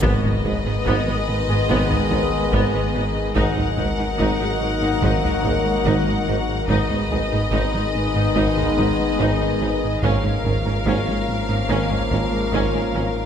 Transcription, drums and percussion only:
0.03 taiko loud
0.24 taiko low medium
0.45 taiko low medium
0.86 taiko medium
1.70 taiko medium
1.91 taiko low medium
2.12 taiko low medium
2.53 taiko medium
3.36 taiko loud
3.57 taiko low soft
3.78 taiko low medium
4.19 taiko medium
5.03 taiko medium
5.24 taiko low medium
5.45 taiko low medium
5.86 taiko medium
6.69 taiko medium
6.90 taiko low soft
7.11 taiko low medium
7.53 taiko medium
8.36 taiko medium
8.57 taiko low medium
8.77 taiko low medium
9.19 taiko medium
10.03 taiko medium
10.23 taiko low soft
10.44 taiko low medium
10.86 taiko medium
11.69 taiko medium
11.90 taiko low soft
12.11 taiko low medium
12.53 taiko medium

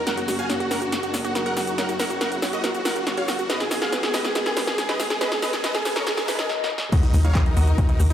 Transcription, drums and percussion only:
0.07 snare medium
0.07 closed hi-hat medium
0.07 shaker soft
0.17 closed hi-hat medium
0.17 shaker soft
0.28 snare medium
0.28 open hi-hat loud
0.28 shaker medium
0.39 closed hi-hat medium
0.39 shaker soft
0.50 snare medium
0.50 closed hi-hat medium
0.50 shaker soft
0.60 closed hi-hat soft
0.71 snare medium
0.71 open hi-hat medium
0.71 shaker medium
0.82 closed hi-hat soft
0.82 shaker soft
0.92 snare medium
0.92 closed hi-hat loud
0.92 shaker soft
1.03 closed hi-hat soft
1.03 shaker soft
1.14 snare medium
1.14 open hi-hat loud
1.14 shaker medium
1.25 closed hi-hat soft
1.25 shaker soft
1.35 snare medium
1.35 closed hi-hat medium
1.35 shaker soft
1.46 closed hi-hat soft
1.57 snare medium
1.57 open hi-hat medium
1.57 shaker medium
1.67 closed hi-hat medium
1.67 shaker soft
1.78 snare medium
1.78 closed hi-hat medium
1.78 shaker soft
1.89 closed hi-hat medium
1.89 shaker soft
2.00 snare medium
2.00 open hi-hat medium
2.00 shaker medium
2.10 closed hi-hat medium
2.10 shaker soft
2.21 snare medium
2.21 closed hi-hat medium
2.21 shaker soft
2.32 closed hi-hat medium
2.32 shaker soft
2.42 snare medium
2.42 open hi-hat medium
2.42 shaker medium
2.53 closed hi-hat medium
2.53 shaker soft
2.64 snare medium
2.64 closed hi-hat medium
2.64 shaker soft
2.75 closed hi-hat medium
2.75 shaker soft
2.85 snare medium
2.85 open hi-hat loud
2.85 shaker medium
2.96 closed hi-hat medium
2.96 shaker soft
3.07 snare medium
3.07 closed hi-hat medium
3.07 shaker soft
3.17 closed hi-hat medium
3.28 snare medium
3.28 open hi-hat medium
3.28 shaker medium
3.39 closed hi-hat medium
3.39 shaker soft
3.50 snare medium
3.50 closed hi-hat loud
3.50 shaker soft
3.60 snare medium
3.60 closed hi-hat medium
3.60 shaker soft
3.71 snare medium
3.71 open hi-hat loud
3.71 shaker medium
3.82 snare medium
3.82 closed hi-hat medium
3.82 shaker soft
3.92 snare medium
3.92 closed hi-hat medium
3.92 shaker soft
4.03 snare medium
4.03 closed hi-hat medium
4.14 snare loud
4.14 open hi-hat medium
4.14 shaker medium
4.25 snare medium
4.25 closed hi-hat medium
4.25 shaker soft
4.35 snare loud
4.35 closed hi-hat loud
4.35 shaker soft
4.46 snare medium
4.46 closed hi-hat medium
4.46 shaker soft
4.57 snare loud
4.57 open hi-hat loud
4.57 shaker medium
4.67 snare medium
4.67 closed hi-hat medium
4.67 shaker soft
4.78 snare medium
4.78 closed hi-hat medium
4.78 shaker soft
4.89 snare medium
4.89 closed hi-hat medium
5.00 snare loud
5.00 open hi-hat medium
5.00 shaker medium
5.10 snare medium
5.10 closed hi-hat medium
5.10 shaker soft
5.21 snare loud
5.21 closed hi-hat medium
5.21 shaker soft
5.32 snare medium
5.32 closed hi-hat medium
5.32 shaker soft
5.42 snare loud
5.42 open hi-hat loud
5.42 shaker medium
5.53 snare medium
5.53 closed hi-hat medium
5.53 shaker soft
5.64 snare loud
5.64 closed hi-hat loud
5.64 shaker soft
5.75 snare loud
5.75 closed hi-hat medium
5.75 shaker soft
5.85 snare loud
5.85 open hi-hat medium
5.85 shaker medium
5.96 snare medium
5.96 closed hi-hat medium
5.96 shaker soft
6.07 snare loud
6.07 closed hi-hat loud
6.07 shaker soft
6.17 snare medium
6.17 closed hi-hat medium
6.17 shaker soft
6.28 snare loud
6.28 open hi-hat loud
6.28 shaker medium
6.39 snare medium
6.39 closed hi-hat medium
6.39 shaker soft
6.50 snare medium
6.64 snare medium
6.78 snare medium
6.92 kick loud
6.92 closed hi-hat loud
6.92 crash loud
6.92 shaker soft
7.03 closed hi-hat medium
7.03 shaker soft
7.14 open hi-hat loud
7.14 shaker medium
7.25 closed hi-hat medium
7.25 shaker soft
7.35 kick loud
7.35 clap loud
7.35 closed hi-hat loud
7.35 shaker soft
7.46 closed hi-hat medium
7.57 open hi-hat loud
7.57 shaker medium
7.67 closed hi-hat medium
7.67 shaker soft
7.78 kick loud
7.78 closed hi-hat loud
7.78 shaker soft
7.89 closed hi-hat medium
7.89 shaker soft
8.00 open hi-hat loud
8.00 shaker medium

